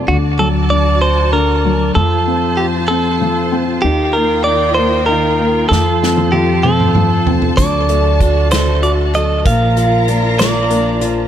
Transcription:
0.07 1.92 D2 medium
0.07 0.69 D3 medium
0.07 1.94 F#4 medium
0.07 0.17 F#4 medium
0.07 1.94 D5 medium
0.07 1.94 A5 medium
0.38 1.60 F#3 soft
0.38 0.48 A4 medium
0.70 1.31 D3 soft
0.70 0.99 D5 medium
1.01 1.32 C5 medium
1.33 1.94 D3 soft
1.33 1.91 A#4 medium
1.65 1.95 F#3 soft
1.95 3.79 F2 medium
1.95 3.20 F3 medium
1.95 7.54 F4 medium
1.95 2.60 A4 medium
1.95 3.81 C5 medium
1.95 3.81 A5 medium
2.27 2.89 C4 soft
2.57 3.80 F4 soft
2.57 2.66 G4 medium
2.88 3.51 C4 medium
2.88 3.55 A4 medium
3.21 3.81 F3 soft
3.52 3.82 C4 soft
3.82 5.67 D#2 medium
3.82 4.45 D#3 medium
3.82 5.69 D#4 medium
3.82 4.15 G4 medium
3.82 5.69 A#4 medium
3.82 5.69 G5 medium
4.13 4.76 A#3 soft
4.13 4.44 A#4 medium
4.44 5.07 D#3 soft
4.44 4.74 D5 medium
4.74 5.38 A#3 medium
4.74 5.06 C5 medium
5.06 5.69 D#3 medium
5.06 5.66 A#4 medium
5.40 5.70 A#3 soft
5.69 7.54 F2 medium
5.69 6.94 F3 medium
5.69 6.34 A4 medium
5.69 9.42 A4 medium
5.69 7.57 C5 medium
5.69 9.42 A5 medium
5.69 snare medium
6.03 6.63 C4 soft
6.03 snare medium
6.17 high tom medium
6.32 7.55 F4 soft
6.32 6.65 G4 medium
6.32 high tom medium
6.63 7.26 C4 soft
6.63 7.30 A4 medium
6.63 mid tom medium
6.80 mid tom medium
6.95 7.56 F3 soft
6.95 mid tom medium
7.27 7.57 C4 soft
7.27 floor tom medium
7.42 floor tom medium
7.57 9.42 D2 medium
7.57 9.42 D3 medium
7.57 7.88 F#3 medium
7.57 9.43 F#4 medium
7.57 8.47 D5 medium
7.57 kick medium
7.57 closed hi-hat medium
7.89 9.13 F#3 medium
7.89 9.11 A3 soft
7.89 closed hi-hat soft
8.20 10.08 D4 medium
8.20 8.81 F#4 soft
8.20 kick medium
8.20 closed hi-hat medium
8.51 9.52 A3 soft
8.51 9.13 A4 soft
8.51 8.83 C5 medium
8.51 snare medium
8.51 closed hi-hat medium
8.83 9.43 F#4 soft
8.83 8.91 D5 medium
8.83 closed hi-hat soft
9.14 9.45 F#3 soft
9.14 9.45 A4 soft
9.14 9.46 D#5 medium
9.14 closed hi-hat soft
9.45 11.28 A#1 medium
9.45 9.76 F3 medium
9.45 10.07 A#3 medium
9.45 11.28 F4 medium
9.45 11.28 A#4 medium
9.45 10.05 F5 medium
9.45 11.28 A#5 medium
9.45 kick loud
9.45 closed hi-hat medium
9.77 11.00 F3 medium
9.77 10.37 F4 medium
9.77 closed hi-hat soft
10.08 10.69 A#3 soft
10.08 10.70 D4 medium
10.08 closed hi-hat soft
10.39 11.28 A#3 medium
10.39 10.99 F4 medium
10.39 11.06 D5 loud
10.39 snare loud
10.39 closed hi-hat medium
10.70 11.28 A#3 medium
10.70 11.28 D4 medium
10.70 closed hi-hat medium
11.00 11.28 F3 medium
11.00 11.28 F4 soft
11.00 closed hi-hat soft

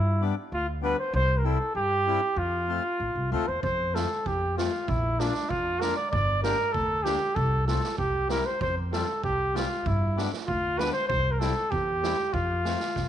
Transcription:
0.00 0.30 G2 medium
0.00 0.22 E4 medium
0.21 0.35 G3 soft
0.21 0.35 B3 soft
0.21 0.35 D4 soft
0.52 0.92 D2 medium
0.52 0.67 F4 medium
0.82 0.96 G3 medium
0.82 0.96 B3 soft
0.82 0.97 D4 medium
0.82 0.98 B4 medium
0.99 1.13 C5 medium
1.13 1.54 C2 medium
1.13 1.39 C5 medium
1.38 1.46 A#4 medium
1.43 1.58 G3 soft
1.43 1.58 C4 soft
1.43 1.58 E4 soft
1.43 1.75 A4 medium
1.75 2.15 G2 medium
1.75 2.39 G4 medium
2.06 2.20 G3 medium
2.06 2.21 C4 soft
2.06 2.21 E4 medium
2.36 2.77 F2 medium
2.36 3.32 F4 medium
2.68 2.83 A3 soft
2.68 2.83 C4 soft
2.68 2.83 F4 soft
3.00 3.14 A1 medium
3.15 3.30 C2 medium
3.31 3.46 D2 medium
3.31 3.46 A3 medium
3.31 3.46 C4 soft
3.31 3.46 F4 medium
3.31 3.49 A4 medium
3.48 3.62 E2 medium
3.48 3.62 C5 medium
3.63 4.04 F2 medium
3.63 3.96 C5 medium
3.63 kick medium
3.94 4.08 A3 soft
3.94 4.08 C4 soft
3.94 4.09 F4 soft
3.94 4.28 A4 medium
3.94 snare medium
4.26 4.66 F2 medium
4.26 4.57 G4 medium
4.26 kick soft
4.57 4.71 A3 soft
4.57 4.71 C4 soft
4.57 4.89 F4 medium
4.57 4.72 F4 medium
4.57 snare soft
4.88 5.29 A#1 medium
4.88 5.21 E4 medium
4.88 kick medium
5.20 5.33 A#3 soft
5.20 5.51 D4 medium
5.20 5.33 D4 soft
5.20 5.34 F4 soft
5.20 snare medium
5.35 snare soft
5.49 5.90 F2 medium
5.49 5.82 F4 medium
5.49 kick soft
5.80 5.95 A#3 medium
5.80 5.96 D4 soft
5.80 5.96 F4 soft
5.80 5.95 A#4 medium
5.80 snare medium
5.96 6.10 D5 medium
6.11 6.53 G1 medium
6.11 6.41 D5 medium
6.11 kick medium
6.43 6.57 A#3 soft
6.43 6.57 D4 soft
6.43 6.57 G4 soft
6.43 6.74 A#4 medium
6.43 snare medium
6.72 7.14 D2 medium
6.72 7.05 A4 medium
6.72 kick soft
7.03 7.19 A#3 soft
7.03 7.19 D4 soft
7.03 7.36 G4 medium
7.03 7.19 G4 medium
7.03 snare medium
7.35 7.77 C2 medium
7.35 7.66 A4 medium
7.35 kick medium
7.67 7.81 A3 soft
7.67 7.81 C4 soft
7.67 7.82 F4 soft
7.67 7.95 A4 medium
7.67 snare soft
7.84 snare soft
7.98 8.39 C2 medium
7.98 8.28 G4 medium
7.98 kick soft
8.29 8.43 G3 soft
8.29 8.44 C4 soft
8.29 8.44 E4 soft
8.29 8.48 A#4 medium
8.29 snare medium
8.46 8.61 C5 medium
8.61 9.01 F2 medium
8.61 8.76 C5 medium
8.61 kick medium
8.92 9.06 G3 soft
8.92 9.06 C4 soft
8.92 9.07 F4 soft
8.92 9.21 A4 medium
8.92 snare soft
9.24 9.64 C2 medium
9.24 9.58 G4 medium
9.24 kick soft
9.54 9.68 G3 soft
9.54 9.68 C4 soft
9.54 9.69 F4 soft
9.54 9.88 F4 medium
9.54 snare medium
9.86 10.26 G2 medium
9.86 10.18 E4 medium
9.86 kick medium
10.16 10.31 G3 soft
10.16 10.31 B3 soft
10.16 10.31 D4 soft
10.16 snare soft
10.33 snare soft
10.47 10.88 D2 medium
10.47 10.80 F4 medium
10.47 kick soft
10.78 10.92 G3 soft
10.78 10.93 B3 soft
10.78 10.93 D4 soft
10.78 10.92 B4 medium
10.78 snare medium
10.93 11.07 C5 medium
11.08 11.50 C2 medium
11.08 11.33 C5 medium
11.08 kick medium
11.31 11.40 A#4 medium
11.39 11.54 G3 soft
11.39 11.55 C4 soft
11.39 11.55 E4 medium
11.39 11.72 A4 medium
11.39 snare soft
11.71 12.12 E2 medium
11.71 12.35 G4 medium
11.71 kick soft
12.02 12.16 G3 soft
12.02 12.16 C4 soft
12.02 12.17 E4 soft
12.02 snare medium
12.33 12.74 F2 medium
12.33 13.09 F4 medium
12.33 kick soft
12.65 12.79 A3 soft
12.65 12.79 C4 soft
12.65 12.79 F4 medium
12.65 snare soft
12.80 snare soft
12.96 13.09 C2 medium
12.96 kick soft
12.96 snare soft

